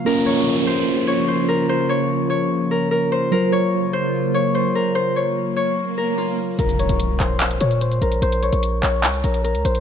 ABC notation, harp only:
X:1
M:4/4
L:1/8
Q:1/4=147
K:Bbm
V:1 name="Harp"
B d2 c2 d c B | c d2 d2 B B c | B d2 c2 d c B | c d2 d2 B F z |
B d2 c2 d c B | c d2 d2 B B c |]